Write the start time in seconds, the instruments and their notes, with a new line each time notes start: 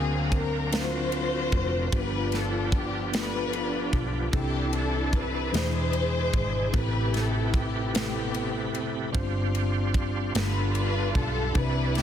Already playing: fingered electric bass D2, tine electric piano D3 C4 D4 F#4 A#4 F5, tonewheel organ F#3 C4 D4 A#4, string section A#3 C4 G#4
0.32 string section A#4, kick, ride
0.72 tine electric piano F#3 C4 D4 A#4 F5, string section F4 F#4, snare, ride
0.76 string section C5
1.12 ride
1.52 fingered electric bass F1, kick, ride
1.92 fingered electric bass G1, tine electric piano G2 B3 D4 F4 G4 B4, tonewheel organ F3 B3 D4 G4, string section D4 F4, kick, ride
1.97 string section B4
2.32 snare, ride
2.36 string section A4
2.72 kick, ride
2.77 string section G4
3.12 tine electric piano B3 D4 F4 G4 A4, snare, ride
3.16 string section D4 F4 B4
3.53 ride
3.93 fingered electric bass B1, kick, ride
4.31 fingered electric bass C2, tine electric piano C3 C4 D4 E4 G4 A4, tonewheel organ E3 C4 D4 A4, kick, ride
4.36 string section D4 E4 G4
4.73 string section A4, ride
5.13 string section B4, kick, ride
5.53 fingered electric bass E2, tine electric piano B2 E3 D4 E4 G#4 B5, tonewheel organ G#3 E4 G#4, string section G#4 C5, snare, ride
5.93 ride
6.33 fingered electric bass G#1, kick, ride
6.73 fingered electric bass A1, tine electric piano A2 C4 E4 G4 A4 B4, tonewheel organ C3 A3 G4 B4, string section E4, kick, ride
6.77 string section G4 B4
7.14 string section A4, snare, ride
7.54 string section G4, kick, ride
7.94 tine electric piano C3 E4 G4 A4 B4, string section B3 C4 G4, snare, ride
8.34 ride
8.74 fingered electric bass F1, ride
9.12 fingered electric bass G1, tine electric piano G2 C4 D4 F4 G4 C5, tonewheel organ G3 D4 F4 C5, kick, ride
9.55 ride
9.94 kick, ride
10.34 fingered electric bass G1, tine electric piano G2 B3 D4 F4 G4 A4, tonewheel organ G3 B3 F4 A4, string section D4 F4 B4, snare, ride
10.75 string section B4, ride
11.15 fingered electric bass B1, string section A4, kick, ride
11.54 fingered electric bass C2, tine electric piano C3 C4 D4 E4 G4 B4, tonewheel organ E3 C4 D4 D5, string section D4 E4 B4, kick, ride
11.95 string section G4, snare, ride